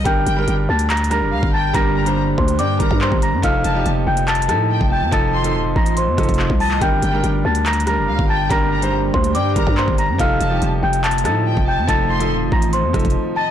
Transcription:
<<
  \new Staff \with { instrumentName = "Celesta" } { \time 4/4 \key g \minor \tempo 4 = 142 <g'' g'''>4 r8 <a'' a'''>8 <bes'' bes'''>8 <bes'' bes'''>4 <a'' a'''>8 | <bes'' bes'''>4 r8 <c'' c'''>8 <d'' d'''>4 <c'' c'''>8 <bes'' bes'''>8 | <f'' f'''>4 r8 <g'' g'''>8 <a'' a'''>8 <a'' a'''>4 <g'' g'''>8 | <a'' a'''>4 r8 <bes'' bes'''>8 <c'' c'''>4. <a'' a'''>8 |
<g'' g'''>4 r8 <a'' a'''>8 <bes'' bes'''>8 <bes'' bes'''>4 <a'' a'''>8 | <bes'' bes'''>4 r8 <c'' c'''>8 <d'' d'''>4 <c'' c'''>8 <bes'' bes'''>8 | <f'' f'''>4 r8 <g'' g'''>8 <a'' a'''>8 <a'' a'''>4 <g'' g'''>8 | <a'' a'''>4 r8 <bes'' bes'''>8 <c'' c'''>4. <a'' a'''>8 | }
  \new Staff \with { instrumentName = "Violin section" } { \time 4/4 \key g \minor r8 g''8 r2 f''8 g''8 | r8 bes''8 r4 g''8 bes''8 r4 | r8 a''8 r2 g''8 a''8 | r8 c'''8 r2 r8 ees''8 |
r8 g''8 r2 f''8 g''8 | r8 bes''8 r4 g''8 bes''8 r4 | r8 a''8 r2 g''8 a''8 | r8 c'''8 r2 r8 ees''8 | }
  \new Staff \with { instrumentName = "Felt piano" } { \time 4/4 \key g \minor <g d' bes'>8 r16 <g d' bes'>4 r8. <g d' bes'>4 r8 | <g d' bes'>8 r16 <g d' c''>4 r8. <g d' bes'>4 r8 | <f ees' a'>8 r16 <f ees' g'>4 r8. <f ees' a'>4 r8 | <f ees' a'>8 r16 <f ees' a'>4 r8. <f ees' a'>4 r8 |
<g d' bes'>8 r16 <g d' bes'>4 r8. <g d' bes'>4 r8 | <g d' bes'>8 r16 <g d' c''>4 r8. <g d' bes'>4 r8 | <f ees' a'>8 r16 <f ees' g'>4 r8. <f ees' a'>4 r8 | <f ees' a'>8 r16 <f ees' a'>4 r8. <f ees' a'>4 r8 | }
  \new Staff \with { instrumentName = "Ambient pad" } { \time 4/4 \key g \minor <d g bes g'>1~ | <d g bes g'>1 | <ees a c' f'>1~ | <ees a c' f'>1 |
<d g bes g'>1~ | <d g bes g'>1 | <ees a c' f'>1~ | <ees a c' f'>1 | }
  \new Staff \with { instrumentName = "808-style bass" } { \clef bass \time 4/4 \key g \minor g,,8 g,,8 g,,8 d,4~ d,16 f,,16 d,16 g,,8. | g,,4. d,8 g,8 g,,16 g,8 g,,8 g,16 | f,,8 f,,8 f,,8 f,,4 a,8. f,,8 f,16 | f,,4 ees,,16 f,,16 a,,8. f,16 f,,16 f,,8 c,8. |
g,,8 g,,8 g,,8 d,4~ d,16 f,,16 d,16 g,,8. | g,,4. d,8 g,8 g,,16 g,8 g,,8 g,16 | f,,8 f,,8 f,,8 f,,4 a,8. f,,8 f,16 | f,,4 ees,,16 f,,16 a,,8. f,16 f,,16 f,,16 r4 | }
  \new DrumStaff \with { instrumentName = "Drums" } \drummode { \time 4/4 <hh bd>8 hh8 hh8. hh16 \tuplet 3/2 { <hc hh>16 hh16 hh16 <hh ss>16 r16 r16 } r16 bd8. | <hh bd>8. hh16 r8 bd16 hh16 hh8 <hh bd>16 bd16 hc16 bd16 hh8 | <hh bd>8 hh8 hh8. hh16 \tuplet 3/2 { <hc hh>16 hh16 hh16 <hh ss>16 r16 r16 } r16 bd8. | <hh bd>8. hh16 r8 bd16 hh16 hh8 <hh bd ss>32 hh32 <hh bd>32 hh32 <hc ss>16 bd16 hho16 hc16 |
<hh bd>8 hh8 hh8. hh16 \tuplet 3/2 { <hc hh>16 hh16 hh16 <hh ss>16 r16 r16 } r16 bd8. | <hh bd>8. hh16 r8 bd16 hh16 hh8 <hh bd>16 bd16 hc16 bd16 hh8 | <hh bd>8 hh8 hh8. hh16 \tuplet 3/2 { <hc hh>16 hh16 hh16 <hh ss>16 r16 r16 } r16 bd8. | <hh bd>8. hh16 r8 bd16 hh16 hh8 <hh bd ss>32 hh32 <hh bd>32 hh32 r4 | }
>>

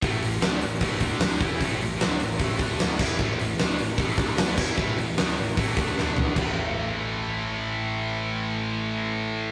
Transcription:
<<
  \new Staff \with { instrumentName = "Distorted electric guitar" } { \clef bass \time 4/4 \key d \minor \tempo 4 = 151 <a, e a>8 <a, e>8 <d a d'>8 <a, e>8 <a, e a>8 <d a d'>4 <e b e'>8 | <a, e a>8 <a, e>8 <d a d'>8 <a, e>8 <a, e a>8 <d a d'>4 <e b e'>8 | <a, e a>8 <a, e>8 <d a d'>8 <a, e>8 <a, e a>8 <d a d'>4 <e b e'>8 | <a, e a>8 <a, e>8 <d a d'>8 <a, e>8 <a, e a>8 <d a d'>8 <d a d'>4 |
<a, e a>1~ | <a, e a>1 | }
  \new Staff \with { instrumentName = "Distorted electric guitar" } { \clef bass \time 4/4 \key d \minor <a, e a>8 <a, e>8 <d a d'>8 <a, e>8 <a, e a>8 <d a d'>4 <e b e'>8 | <a, e a>8 <a, e>8 <d a d'>8 <a, e>8 <a, e a>8 <d a d'>4 <e b e'>8 | <a, e a>8 <a, e>8 <d a d'>8 <a, e>8 <a, e a>8 <d a d'>4 <e b e'>8 | <a, e a>8 <a, e>8 <d a d'>8 <a, e>8 <a, e a>8 <d a d'>8 <d a d'>4 |
<a, e a>1~ | <a, e a>1 | }
  \new Staff \with { instrumentName = "Picked electric bass" } { \clef bass \time 4/4 \key d \minor a,,8 a,,8 d,8 a,,8 a,,8 d,4 e,8 | a,,8 a,,8 d,8 a,,8 a,,8 d,4 e,8 | a,,8 a,,8 d,8 a,,8 a,,8 d,4 e,8 | a,,8 a,,8 d,8 a,,8 a,,8 d,8 d,4 |
a,,1~ | a,,1 | }
  \new DrumStaff \with { instrumentName = "Drums" } \drummode { \time 4/4 <hho bd>8 hho8 <hho sn>8 hho8 <hho bd>8 <hho bd>8 <hho sn>8 <hho bd>8 | <hho bd>8 hho8 <hho sn>8 hho8 <hho bd>8 <hho bd>8 <hho sn>8 <cymc bd>8 | bd8 hho8 <hho sn>8 hho8 <hho bd>8 <hho bd>8 <hho sn>8 <cymc bd>8 | bd8 hho8 <hho sn>8 hho8 <hho bd>8 <hho bd>8 sn8 tomfh8 |
<cymc bd>4 r4 r4 r4 | r4 r4 r4 r4 | }
>>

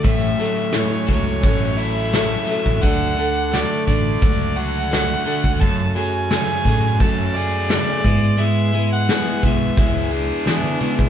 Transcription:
<<
  \new Staff \with { instrumentName = "Fiddle" } { \time 4/4 \key a \major \tempo 4 = 86 e''4 cis''8 cis''4 e''4. | fis''4 d''8 d''4 fis''4. | a''8 gis''4. a''8 d''4. | e''8. fis''8. e''4 d'4. | }
  \new Staff \with { instrumentName = "Steel-string acoustic guitar" } { \time 4/4 \key a \major <a, e fis a cis' a'>8 <fis a cis' a'>8 <a, e fis a cis' a'>8 <fis a cis' a'>8 <fis a cis' a'>4 <a, e fis a cis' a'>8 <fis a cis' a'>8 | <d fis a d' a'>8 <a d' a'>8 <d fis a d' a'>8 <a d' a'>8 <fis a d' a'>4 <fis a d' a'>8 <a d' a'>8 | <fis, cis fis a cis'>8 <fis a cis' gis'>8 <fis, cis fis a cis' gis'>8 <fis a cis' gis'>8 <fis a>4 <fis, cis fis a gis'>8 <b e' gis'>8 | <gis b e' gis'>8 <b e' gis'>8 <gis b e' gis'>8 <b e' gis'>8 <gis b e' gis'>4 <gis b e' gis'>8 <b e' gis'>8 | }
  \new Staff \with { instrumentName = "Overdriven electric guitar" } { \clef bass \time 4/4 \key a \major a,8 fis8 a8 fis8 cis'8 e'8 a8 fis8 | d8 d8 a8 d8 d'8 fis'8 a8 d8 | fis,8 fis8 a8 fis8 cis'8 gis'8 a8 gis8 | gis8 gis8 b8 gis8 e'8 gis'8 b8 gis8 | }
  \new Staff \with { instrumentName = "Fingered electric bass" } { \clef bass \time 4/4 \key a \major a,,8 r4 cis,8 a,,4.~ a,,16 a,,16 | d,4. a,,8 cis,4.~ cis,16 cis,16 | fis,8 r4 a,8 fis,4. gis,8~ | gis,4. b,,8 cis,4 e16 d16 cis16 b,16 | }
  \new DrumStaff \with { instrumentName = "Drums" } \drummode { \time 4/4 <cymc bd>8 hho8 <hho sn>8 <hho bd>8 <hho bd>8 hho8 <hho sn>8 hho16 bd16 | <hho bd>8 hho8 <hho sn>8 <hho bd>8 <hho bd>8 hho8 <hho sn>8 hho16 bd16 | <hho bd>8 hho8 <hho sn>8 <hho bd>8 <hho bd>8 hho8 <hho sn>8 <hho bd>8 | hho8 hho8 <hho sn>8 <hho bd>8 <hho bd>8 hho8 <hho sn>8 hho16 bd16 | }
>>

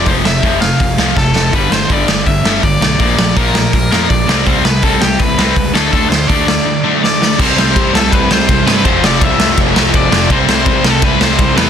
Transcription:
<<
  \new Staff \with { instrumentName = "Overdriven electric guitar" } { \time 4/4 \key c \major \tempo 4 = 164 c''8 e''4 f''4. a'4 | b'8 c''8 d''4 e''4 d''8 d''8 | d''4 bes'4 bes'8 bes'8 d''4 | c''8 b'8 a'8 g'8 b'4. a'8 |
a'8 c''8 d''2 d''4 | c''8 c''4 a'8 b'8 c''4 b'8 | c''8 d''8 e''4 r4 d''4 | c''8 c''4 a'8 b'8 c''4 b'8 | }
  \new Staff \with { instrumentName = "Distorted electric guitar" } { \clef bass \time 4/4 \key c \major r1 | r1 | r1 | r1 |
r1 | <c e g c' e'>2.~ <c e g c' e'>8 <c e g c' e'>8 | <f a c' f'>2.~ <f a c' f'>8 <f a c' f'>8 | <c e g c' e'>2.~ <c e g c' e'>8 <c e g c' e'>8 | }
  \new Staff \with { instrumentName = "Distorted electric guitar" } { \clef bass \time 4/4 \key c \major <f, c f>8 <f, c>8 <f, c f>8 <f, c>8 <f, c>8 <f, c f>8 <f, c>8 <f, c>8 | <g, d g>8 <g, d>8 <g, d g>8 <g, d>8 <g, d>8 <g, d g>8 <g, d>8 <g, d>8 | <bes, f bes>8 <bes, f>8 <bes, f bes>8 <bes, f>8 <bes, f>8 <bes, f bes>8 <bes, f>8 <c g c'>8 | <c g c'>8 <c g>8 <c g c'>8 <c g>8 <c g>8 <c g c'>8 <c g>8 <d a d'>8 |
<d a d'>8 <d a>8 <d a d'>8 <d a>8 <d a>8 <d a d'>8 <d a>8 <d a>8 | <c g c'>1 | <f, c f>1 | <c g c'>1 | }
  \new Staff \with { instrumentName = "Distorted electric guitar" } { \clef bass \time 4/4 \key c \major <f, c f>8 <f, c>8 <f, c f>8 <f, c>8 <f, c>8 <f, c f>8 <f, c>8 <f, c>8 | <g, d g>8 <g, d>8 <g, d g>8 <g, d>8 <g, d>8 <g, d g>8 <g, d>8 <g, d>8 | <bes, f bes>8 <bes, f>8 <bes, f bes>8 <bes, f>8 <bes, f>8 <bes, f bes>8 <bes, f>8 <c g c'>8 | <c g c'>8 <c g>8 <c g c'>8 <c g>8 <c g>8 <c g c'>8 <c g>8 <d a d'>8 |
<d a d'>8 <d a>8 <d a d'>8 <d a>8 <d a>8 <d a d'>8 <d a>8 <d a>8 | <c g c'>2.~ <c g c'>8 <c g c'>8 | <f, c f>2.~ <f, c f>8 <f, c f>8 | <c g c'>2.~ <c g c'>8 <c g c'>8 | }
  \new Staff \with { instrumentName = "Picked electric bass" } { \clef bass \time 4/4 \key c \major f,,8 f,,8 f,,4 f,,8 c,8 f,,8 f,,8 | g,,8 g,,8 g,,8 g,,8 g,,8 g,,8 g,,8 b,,8 | bes,,8 bes,,8 bes,,4 bes,,8 f,8 bes,,8 c,8 | c,8 c,8 c,8 c,8 c,8 c,8 cis,8 d,8 |
d,8 d,8 d,4 r2 | c,8 c,8 c8 c,8 c,8 c,8 c,8 g,8 | f,,8 f,,8 c,4 f,,8 c,8 f,,8 f,,8 | c,8 c,8 c8 c,8 c,8 c,8 c,8 e,8 | }
  \new DrumStaff \with { instrumentName = "Drums" } \drummode { \time 4/4 <hho bd>8 sn8 <hho bd>8 sn8 <hho bd>8 sn8 <bd sn>8 sn8 | <hho bd>8 sn8 <hho bd>8 sn8 <hho bd>8 sn8 <hho bd>8 sn8 | <hho bd>8 sn8 <hho bd>8 sn8 <hho bd>8 sn8 <hho bd>8 sn8 | <hho bd>8 sn8 <hho bd>8 sn8 <hho bd>8 sn8 <hho bd>8 sn8 |
<hho bd>8 sn8 <hho bd>8 sn8 r4 sn8 sn8 | <cymc bd>8 sn8 <bd cymr>8 sn8 <bd cymr>8 sn8 <bd cymr>8 sn8 | <bd cymr>8 sn8 <bd cymr>8 sn8 <bd cymr>8 sn8 <bd cymr>8 sn8 | <bd cymr>8 sn8 <bd cymr>8 sn8 <bd cymr>8 sn8 <bd cymr>8 sn8 | }
>>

